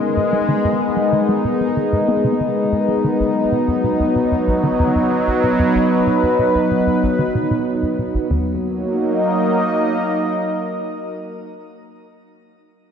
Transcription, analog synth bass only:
0.17 0.27 G#2 medium
0.33 0.40 G#3 medium
0.48 0.59 D#3 medium
0.64 0.69 G#2 medium
0.97 1.07 G#3 medium
1.12 1.20 D#3 medium
1.29 1.36 G#3 medium
1.45 1.52 B2 medium
1.61 1.68 G#3 medium
1.77 1.84 D#3 medium
1.93 1.99 G#2 medium
2.08 2.15 B3 medium
2.24 2.28 C#3 loud
2.40 2.44 D#3 medium
2.72 2.83 G#2 medium
2.88 2.95 G#3 medium
3.04 3.15 D#3 medium
3.20 3.24 B1 medium
3.52 3.63 B2 medium
3.68 3.75 F#2 medium
3.84 3.91 B2 medium
4.00 4.07 D#2 medium
4.16 4.23 B2 medium
4.32 4.39 F#2 medium
4.47 4.54 B1 medium
4.63 4.70 D#3 loud
4.79 4.84 F2 medium
4.95 5.00 F#2 medium
5.27 5.38 B1 medium
5.43 5.50 B2 medium
5.59 5.70 F#2 medium
5.75 5.79 B1 medium
6.07 6.18 B2 medium
6.23 6.30 F#2 medium
6.39 6.46 B2 medium
6.55 6.62 D#2 medium
6.71 6.78 B2 medium
6.87 6.94 F#2 medium
7.03 7.10 B1 medium
7.19 7.26 D#3 medium
7.35 7.42 B2 medium
7.51 7.58 B2 medium
7.82 7.87 F#2 medium
7.99 8.03 B2 medium
8.14 8.19 B1 medium
8.30 8.60 D#2 medium

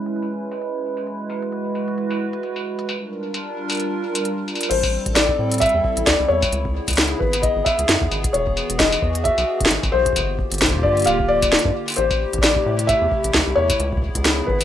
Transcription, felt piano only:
4.69 5.17 C5 loud
5.15 5.62 D5 loud
5.60 6.08 E5 loud
6.06 6.30 D5 loud
6.28 7.23 C#5 loud
7.19 7.43 B4 medium
7.42 7.66 D#5 loud
7.65 8.08 E5 medium
8.33 8.80 C#5 medium
8.78 9.26 D#5 medium
9.24 9.95 E5 loud
9.92 10.86 C5 loud
10.83 11.07 D5 loud
11.06 11.30 F5 loud
11.28 11.71 D5 loud
11.96 12.44 C5 loud
12.42 12.89 D5 loud
12.87 13.58 E5 loud
13.55 14.50 C#5 loud
14.46 14.64 B4 medium

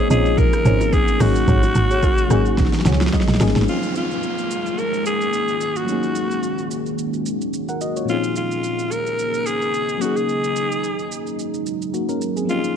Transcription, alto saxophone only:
0.00 0.10 G#4 loud
0.11 0.40 G#4 loud
0.38 0.95 A#4 loud
0.93 1.22 G#4 loud
1.21 3.13 F#4 loud
3.69 3.94 F4 medium
3.97 4.81 F4 medium
4.79 5.06 A#4 loud
5.07 5.79 G#4 loud
5.77 6.87 F#4 medium
8.09 8.35 F4 medium
8.37 8.93 F4 medium
8.92 9.48 A#4 loud
9.47 10.03 G#4 loud
10.02 10.18 F#4 medium
10.17 11.27 G#4 medium
12.50 12.75 F4 loud

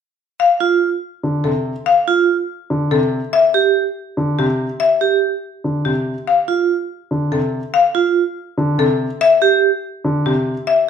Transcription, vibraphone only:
0.60 0.88 F4 soft
2.08 2.35 F4 soft
3.54 3.82 G4 medium
5.01 5.28 G4 soft
6.48 6.75 F4 soft
7.95 8.22 F4 soft
9.42 9.69 G4 medium

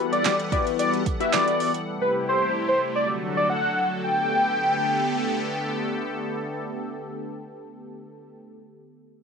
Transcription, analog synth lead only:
0.12 0.35 D5 medium
0.52 0.64 D5 medium
0.79 0.91 D5 medium
1.21 1.31 E5 medium
1.33 1.72 D5 medium
2.01 2.12 B4 medium
2.29 2.52 C5 medium
2.68 2.81 C5 medium
2.96 3.08 D5 medium
3.37 3.48 D5 medium
3.50 3.88 F#5 medium
4.04 5.62 G5 loud

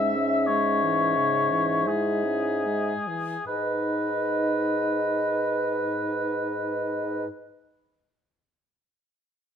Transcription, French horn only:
0.00 0.17 G#3 soft
0.15 0.50 C#4 soft
0.48 0.84 G#3 soft
0.83 1.19 E3 soft
1.17 1.52 C#3 soft
1.50 1.88 E3 soft
1.86 2.26 G#3 soft
2.25 2.67 C#4 soft
2.66 3.09 G#3 soft
3.08 3.36 E3 soft
3.49 7.27 D#4 soft

